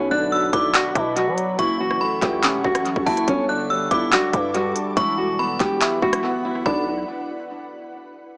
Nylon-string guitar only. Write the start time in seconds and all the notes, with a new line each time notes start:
0.11 D4
0.53 E4
0.74 F#4
0.95 E4
1.16 F#4
1.59 E4
1.80 F#4
2.23 G4
2.65 F#4
3.08 E4
3.28 C#4
3.49 D4
3.92 E4
4.13 F#4
4.34 E4
4.54 F#4
4.97 E4
5.18 F#4
5.60 G4
6.02 F#4
6.45 E4
6.66 D4